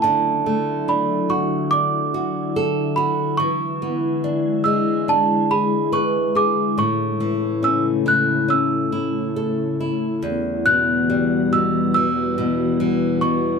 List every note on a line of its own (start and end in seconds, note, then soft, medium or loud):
0.00 6.74 D3 medium
0.00 3.35 D3 medium
0.00 3.35 F#3 medium
0.00 10.20 E4 medium
0.00 0.90 A5 medium
0.46 2.10 A3 soft
0.88 1.71 D4 medium
0.88 1.32 B5 medium
1.29 2.13 F#4 soft
1.29 1.69 C#6 medium
1.71 3.36 D4 medium
1.71 3.00 D6 medium
2.14 2.96 F#4 medium
2.56 3.37 A4 medium
2.96 3.38 F#4 medium
2.96 3.40 B5 medium
3.37 6.74 E3 medium
3.37 6.75 G#3 medium
3.37 4.69 C#6 medium
3.82 5.46 B3 soft
4.24 5.07 D4 medium
4.64 6.31 G#3 soft
4.64 5.08 E6 medium
5.08 6.74 D4 medium
5.08 5.52 A5 medium
5.51 6.34 G#4 medium
5.51 5.90 B5 medium
5.92 6.75 B4 medium
5.92 6.37 C#6 medium
6.35 6.77 G#4 soft
6.35 6.76 D6 medium
6.78 10.20 A2 medium
6.78 10.21 C#3 medium
6.78 10.21 A3 medium
6.78 7.66 C#6 medium
7.20 8.89 E3 soft
7.63 8.47 C#4 soft
7.63 7.83 E6 medium
8.06 8.91 E4 soft
8.06 8.52 F#6 medium
8.48 10.20 C#4 soft
8.48 9.78 E6 medium
8.92 9.79 E4 soft
9.36 10.21 A4 soft
9.80 10.23 E4 soft
10.22 13.59 E2 medium
10.22 13.59 E3 medium
10.22 13.59 G3 medium
10.22 13.59 F#4 medium
10.66 11.51 B2 soft
10.66 11.55 F#6 loud
11.10 12.77 G3 medium
11.53 12.37 B2 soft
11.53 11.93 E6 medium
11.94 12.79 E3 soft
11.94 13.26 E6 loud
12.38 13.21 B2 medium
12.80 13.59 E3 soft
13.21 13.59 B2 soft
13.21 13.59 C#6 medium